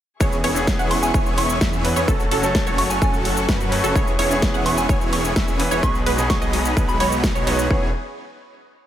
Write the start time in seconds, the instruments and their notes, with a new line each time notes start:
0.20 detuned saw bass E1, grand piano E3 B3 C#4 G#4, supersaw synth B3 C#4 E4 G#4 C#5, string section G#4 E5 C#6, synth pluck C#5, kick, ride, shaker
0.32 shaker
0.44 detuned saw bass E1, supersaw synth B3 C#4 E4 G#4 C#5, synth pluck C#5, open hi-hat, ride
0.55 grand piano E3 B3 C#4 G#4, shaker
0.67 kick, snare, ride, shaker
0.79 detuned saw bass E1, supersaw synth B3 C#4 E4 G#4 F#5, synth pluck F#5, shaker
0.91 synth bell C#6, open hi-hat, ride
1.02 synth bell G#5, shaker
1.14 detuned saw bass E1, supersaw synth B3 C#4 E4 G#4 C#5, synth pluck C#5, kick, ride, shaker
1.26 shaker
1.38 synth bell C#6, open hi-hat, ride
1.50 shaker
1.61 detuned saw bass E2, supersaw synth B3 C#4 E4 G#4 E5, synth pluck E5, kick, snare, ride, shaker
1.73 shaker
1.84 grand piano E3 B3 C#4 B4, open hi-hat, ride
1.96 detuned saw bass E2, supersaw synth B3 C#4 E4 G#4 C#5, synth pluck C#5, shaker
2.07 detuned saw bass F#1, grand piano F#3 A3 C#4 A4, supersaw synth C#4 F#4 A4, synth pluck A4, string section A4 F#5 C#6, kick, ride, shaker
2.20 shaker
2.31 detuned saw bass F#1, supersaw synth C#4 F#4 A4, synth pluck A4, open hi-hat, ride
2.42 grand piano F#3 A3 C#4 A4, shaker
2.55 kick, snare, ride, shaker
2.67 detuned saw bass F#1, supersaw synth C#4 F#4 C#5, synth pluck C#5, shaker
2.78 synth bell C#6, open hi-hat, ride
2.90 synth bell G#5, shaker
3.02 detuned saw bass F#1, supersaw synth C#4 F#4 A4, synth pluck A4, synth bell G#5, kick, ride, shaker
3.14 shaker
3.25 open hi-hat, ride
3.37 shaker
3.49 detuned saw bass F#2, supersaw synth C#4 F#4 B4, synth pluck B4, kick, snare, ride, shaker
3.60 shaker
3.71 grand piano F#3 A3 C#4 B4, open hi-hat, ride
3.84 detuned saw bass F#1, supersaw synth C#4 F#4 A4, synth pluck A4, shaker
3.95 detuned saw bass E1, grand piano E3 B3 C#4 G#4, supersaw synth B3 C#4 E4 G#4 C#5, string section G#4 E5, synth pluck C#5, kick, ride, shaker
4.07 shaker
4.19 detuned saw bass E1, supersaw synth B3 C#4 E4 G#4 C#5, synth pluck C#5, open hi-hat, ride
4.29 grand piano E3 B3 C#4 G#4, shaker
4.42 kick, snare, ride, shaker
4.54 detuned saw bass E1, supersaw synth B3 C#4 E4 G#4 F#5, synth pluck F#5, shaker
4.66 synth bell C#6, open hi-hat, ride
4.78 synth bell G#5, shaker
4.89 detuned saw bass E1, supersaw synth B3 C#4 E4 G#4 C#5, synth pluck C#5, kick, ride, shaker
5.01 shaker
5.13 synth bell C#6, open hi-hat, ride
5.25 shaker
5.36 detuned saw bass E1, supersaw synth B3 C#4 E4 G#4 E5, synth pluck E5, kick, snare, ride, shaker
5.48 shaker
5.59 grand piano E3 B3 C#4 B4, open hi-hat, ride
5.71 detuned saw bass E1, supersaw synth B3 C#4 E4 G#4 C#5, synth pluck C#5, shaker
5.82 detuned saw bass B1, grand piano B2 F#3 B3 D#4 G#4, supersaw synth G#3 B3 D#4 F#4 B4, synth pluck B4, string section D#5 B5, synth bell C#6, kick, ride, shaker
5.95 shaker
6.06 detuned saw bass B1, supersaw synth G#3 B3 D#4 F#4 B4, synth pluck B4, open hi-hat, ride
6.17 grand piano B2 F#3 B3 D#4 G#4, shaker
6.30 synth bell C#6, kick, snare, ride, shaker
6.42 detuned saw bass B1, supersaw synth G#3 B3 D#4 F#4 D#5, synth pluck D#5, shaker
6.53 open hi-hat, ride
6.65 shaker
6.77 detuned saw bass B1, supersaw synth G#3 B3 D#4 F#4 B4, synth pluck B4, kick, ride, shaker
6.88 synth bell B5, shaker
7.00 detuned saw bass B1, supersaw synth G#3 B3 D#4 F#4 C#5, synth pluck C#5, synth bell B5, open hi-hat, ride
7.12 shaker
7.24 kick, snare, ride, shaker
7.35 detuned saw bass B1, supersaw synth G#3 B3 D#4 F#4 C#5, synth pluck C#5, shaker
7.46 detuned saw bass B1, grand piano F#3 B3 D#4 B4, supersaw synth G#3 B3 D#4 F#4 C#5, synth pluck C#5, open hi-hat, ride
7.59 shaker
7.69 detuned saw bass E1, grand piano E3 B3 C#4 G#4, string section E3 C#4 G#4, supersaw synth B3 C#4 E4 G#4 C#5, synth pluck C#5, kick